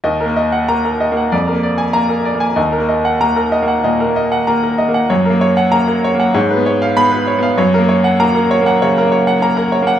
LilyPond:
<<
  \new Staff \with { instrumentName = "Grand piano" } { \time 4/4 \key ees \minor \tempo 4 = 96 << { r4 bes''8 r4. bes''8 r8 | r4 bes''8 r2 r8 | r4 bes''8 r4. ces'''8 r8 | r4 bes''8 r2 r8 | } \\ { ees''16 bes'16 ees''16 ges''8 bes'16 ees''16 ges''16 d''16 bes'16 d''16 aes''8 bes'16 d''16 aes''16 | ees''16 bes'16 ees''16 ges''8 bes'16 ees''16 ges''16 ees''16 bes'16 ees''16 ges''16 bes''16 bes'16 ees''16 ges''16 | des''16 bes'16 des''16 ges''8 bes'16 des''16 ges''16 des''16 ces''16 des''16 f''8 ces''16 des''16 f''16 | des''16 bes'16 des''16 ges''8 bes'16 des''16 ges''16 des''16 bes'16 des''16 ges''16 bes''16 bes'16 des''16 ges''16 | } >> }
  \new Staff \with { instrumentName = "Grand piano" } { \time 4/4 \key ees \minor \tuplet 3/2 { ees,8 bes4 bes4 bes8 f,8 bes4 bes4 bes8 } | \tuplet 3/2 { ees,8 bes4 bes4 bes8 bes,8 bes4 bes4 bes8 } | \tuplet 3/2 { ges,8 bes4 bes4 bes8 aes,8 ces'4 ces'4 ces'8 } | \tuplet 3/2 { ges,8 bes4 bes4 bes8 des8 bes4 bes4 bes8 } | }
>>